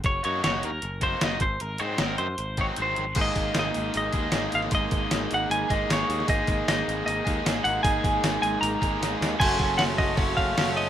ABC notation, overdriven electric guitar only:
X:1
M:4/4
L:1/8
Q:1/4=154
K:Abmix
V:1 name="Overdriven electric guitar"
z [G,B,EG] [G,B,EG] z2 [G,B,EG] [G,B,EG] z | z [E,G,CE] [E,G,CE] z2 [E,G,CE] [E,G,CE] z | [A,B,EA]4- [A,B,EA] [A,B,EA] [A,B,EA]2 | [A,B,EA]4- [A,B,EA] [A,B,EA] [A,B,EA]2 |
[A,B,EA]4- [A,B,EA] [A,B,EA] [A,B,EA]2 | [A,B,EA]4- [A,B,EA] [A,B,EA] [A,B,EA]2 | [G,,D,G,=A,D] [G,A,D] [D,G,A,D]2 [G,,D,G,A,D] [G,A,D] [D,G,A,D] [G,A,D] |]